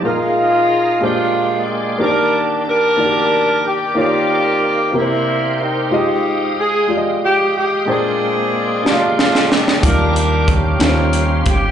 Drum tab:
HH |------------|------------|------------|------------|
SD |------------|------------|------------|------------|
BD |------------|------------|------------|------------|

HH |------------|x-x-x-x-x-x-|
SD |------o-oooo|------o-----|
BD |------------|o---o-----o-|